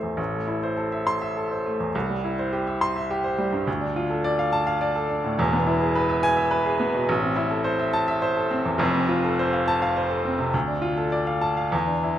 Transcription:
grand piano
Already playing: A1 A3 E4 A4 C5 E5 C6
0.03 E2
0.17 A1
0.32 A3
0.48 E4
0.63 C5
0.77 A4
0.92 E5
1.07 C6
1.21 E5
1.37 A4
1.51 C5
1.66 A3
1.80 E2
1.95 C2
2.09 G3
2.24 E4
2.39 C5
2.53 G4
2.67 E5
2.81 C6
2.96 E5
3.11 G4
3.24 C5
3.38 G3
3.52 G2
3.67 D2
3.81 D4
3.96 F4
4.10 A4
4.24 D5
4.39 F5
4.53 A5
4.67 F5
4.81 D5
4.95 A4
5.09 D4
5.24 A2
5.38 E1 E2
5.53 B3
5.67 E4
5.82 G#4
5.95 B4
6.09 E5
6.23 G#5
6.37 E5
6.51 B4
6.66 G#4
6.80 B3
6.95 B2
7.09 A1
7.22 C4
7.36 E4
7.51 A4
7.64 C5
7.79 E5
7.93 A5
8.08 E5
8.22 C5
8.37 A4
8.51 C4
8.65 E2
8.78 F1 F2
8.94 C4
9.09 F4
9.24 A4
9.39 C5
9.53 F5
9.68 A5
9.82 F5
9.97 C5
10.11 A4
10.25 C4
10.39 C3
10.54 D2
10.68 D4
10.82 F4
10.97 A4
11.12 D5
11.27 F5
11.41 A5
11.57 F5
11.72 E2
11.88 D4
12.03 E4

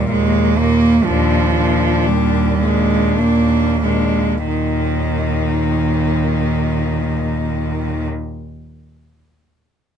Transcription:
cello
Already playing: A#2 A#3
0.10 D#2 G#3
0.58 A#2 A#3
1.05 D#2 A#2 F3 D4
1.56 A#2 D4
2.07 D#2 G3
2.62 A#2 G#3 D4
3.21 D#2 A#3
3.83 A#2 G#3 D4
4.47 D#2 A#2 D#3 D#4

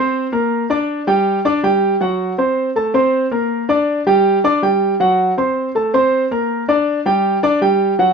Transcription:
grand piano
Already playing: C4 C5 C6
0.32 A#3 A#4 A#5
0.70 D4 D5 D6
1.07 G3 G4 G5
1.45 D4 D5 D6
1.63 G3 G4 G5
2.01 F#3 F#4 F#5
2.38 C4 C5 C6
2.76 A3 A4 A5
2.94 C4 C5 C6
3.31 A#3 A#4 A#5
3.69 D4 D5 D6
4.07 G3 G4 G5
4.44 D4 D5 D6
4.62 G3 G4 G5
5.00 F#3 F#4 F#5
5.38 C4 C5 C6
5.75 A3 A4 A5
5.94 C4 C5 C6
6.31 A#3 A#4 A#5
6.68 D4 D5 D6
7.06 G3 G4 G5
7.43 D4 D5 D6
7.61 G3 G4 G5
7.99 F#3 F#4 F#5

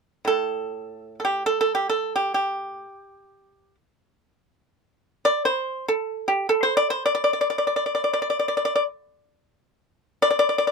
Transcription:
pipa
0.25 A2 A4
1.20 A4
1.25 G4
1.46 A4
1.61 A4
1.75 G4
1.90 A4
2.16 G4
2.34 G4
5.25 D5
5.45 C5
5.88 A4
6.28 G4
6.49 A4
6.63 C5
6.77 D5
6.90 C5
7.06 D5
7.15 D5
7.24 D5
7.33 D5
7.41 D5
7.50 D5
7.58 D5
7.67 D5
7.76 D5
7.86 D5
7.95 D5
8.04 D5
8.13 D5
8.22 D5
8.30 D5
8.39 D5
8.48 D5
8.57 D5
8.65 D5
8.76 D5
10.22 D5
10.31 D5
10.39 D5
10.49 D5
10.58 D5
10.67 D5

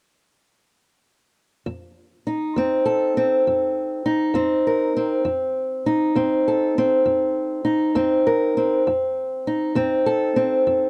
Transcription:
steel-string acoustic guitar
1.66 F2
2.27 D#4
2.56 F2 C4
2.85 A4
3.17 C4
3.47 F2
4.06 D#4
4.34 F2 C4
4.67 A#4
4.97 C4
5.25 F2
5.86 D#4
6.15 F2 C4
6.48 A4
6.78 C4
7.06 F2
7.65 D#4
7.95 F2 C4
8.27 A#4
8.57 C4
8.87 F2
9.47 D#4
9.75 F2 C4
10.06 A4
10.36 C4
10.67 F2

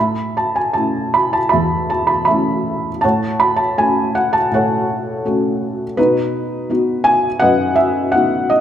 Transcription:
felt piano
Already playing: A2 B5
0.00 E5
0.37 A5
0.56 G#5
0.73 A3 C#4 E4 A5
1.14 B5
1.33 A5
1.49 E5 B5
1.53 E2
1.90 A5
2.07 B5
2.25 A3 E5 B5
2.29 C#4 E4
3.01 A2 C#5 F#5 A5
3.40 B5
3.56 A5
3.78 A3 C#4 F#4 G#5
4.15 F#5
4.33 A5
4.51 A2 C#5 F#5
4.56 A4
5.25 A3 C#4 F#4
5.97 B2 D#4 F#4 B4
6.70 B3 D#4 F#4
7.04 G#5
7.39 F#2 B4 D#5 F#5
7.76 E5
8.12 B3 D#4 F#4 F#5
8.50 D#5

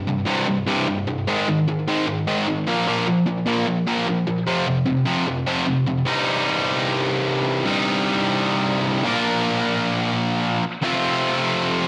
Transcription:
distorted electric guitar
0.07 C2 G2
0.26 C2 G2 C3
0.47 C2 G2
0.67 C2 G2 C3
0.87 C2 G2
1.07 C2 G2
1.27 G#2 D#3 G#3
1.48 G#2 D#3
1.68 G#2 D#3
1.88 G#2 D#3 G#3
2.07 G#2 D#3
2.27 G#2 D#3 G#3
2.48 G#2 D#3
2.67 A#2 F3 A#3
2.87 A#2 F3 A#3
3.07 A#2 F3
3.26 A#2 F3
3.46 A#2 F3 A#3
3.67 A#2 F3
3.87 A#2 F3 A#3
4.07 A#2 F3
4.27 A#2 F3
4.46 F2 C3 F3
4.67 F2 C3
4.86 F2 C3
5.05 F2 C3 F3
5.27 F2 C3
5.46 F2 C3 F3
5.66 F2 C3
5.87 F2 C3
6.05 C2 G2 C3 G3 D#4
7.65 C2 G2 C3 G3 D#4
9.04 A#2 F3 A#3 D4 F4 A#4
10.82 F2 C3 F3 A3 C4 F4

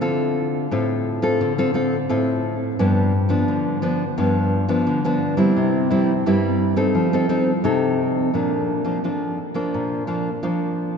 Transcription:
nylon-string guitar
0.01 D3 C4 F4 A4
0.71 A2 C4 F4 A4
1.22 C4 F4 A4
1.41 D3
1.58 C4 F4 A4
1.74 C4 F4 A4
2.09 A2 C4 F4 A4
2.79 G2 F3 B3 D4
3.29 F3 B3 D4
3.48 D3
3.82 F3 B3 D4
4.18 G2 F3 B3 D4
4.69 F3 B3 D4
4.87 D3
5.04 F3 B3 D4
5.37 G3 C4 E4
5.57 C3
5.91 G3 C4 E4
6.26 G2 G3 C4 E4
6.76 C4 D#4 A4
6.95 F3
7.13 C4 D#4 A4
7.29 C4 D#4 A4
7.64 C3 C4 D#4 A4
8.34 A#2 F3 A#3 D4
8.84 F3 A#3 D4
9.04 F3 A#3 D4
9.54 F3 A#3 D4
9.74 A#2
10.07 F3 A#3 D4
10.43 F3 A#3 D4

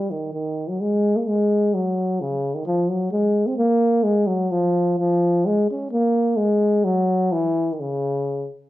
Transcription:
euphonium
Already playing: G3
0.11 D#3
0.33 D#3
0.69 F#3
0.81 G#3
1.16 A#3
1.28 G#3
1.74 F#3
2.21 C#3
2.54 D#3
2.66 F3
2.88 F#3
3.12 G#3
3.46 C4
3.57 A#3
4.03 G#3
4.27 F#3
4.51 F3
4.99 F3
5.46 G#3
5.71 C#4
5.92 A#3
6.37 G#3
6.85 F#3
7.32 E3
7.73 D#3
7.80 C#3

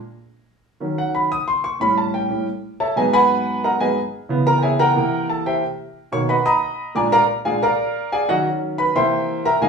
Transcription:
grand piano
0.80 D#3 F#3 C#4
0.98 F#5
1.15 B5
1.32 D#6
1.48 C6
1.64 C#6
1.80 A2 G3 C#4 B5
1.97 A5
2.14 G5
2.30 A2 G3 C#4
2.80 A4 C#5 E5 A5
2.96 G#2 F#3 B3 G#4 B4 D#5 G#5
3.13 B4 F#5 G#5 B5
3.64 A#4 D#5 F#5 A#5
3.80 G#2 F#3 B3 G#4 B4 D#5 G#5
4.29 C#3 E3 B3
4.47 A#4 A#5
4.58 G5
4.63 G#4 C#5 E5 G#5
4.79 A#4 F#5 G5 A#5
4.95 C3 E3 A#3
5.29 A4 A5
5.46 G4 C5 E5 G5
6.12 B2 D#3 A#3 C#5 C#6
6.29 B4 D#5 F#5 B5
6.46 D#5 A#5 B5 D#6
6.95 A#2 G#3 D4 D5 G#5 A#5 D6
7.12 A#4 D5 F5 A#5
7.45 A#2 G#3 D4 G#4 D5 F5 G#5
7.63 A#4 D5 F5 A#5
8.12 G#4 D5 F5 G#5
8.28 D#3 F#3 C#4 F#4 C#5 D#5 F#5
8.78 B4 B5
8.95 C3 E3 A#3 C5 E5 G5 C6
9.45 A#4 E5 G5 A#5
9.61 F2 D#3 G#3 G#4 D#5 F5 G#5

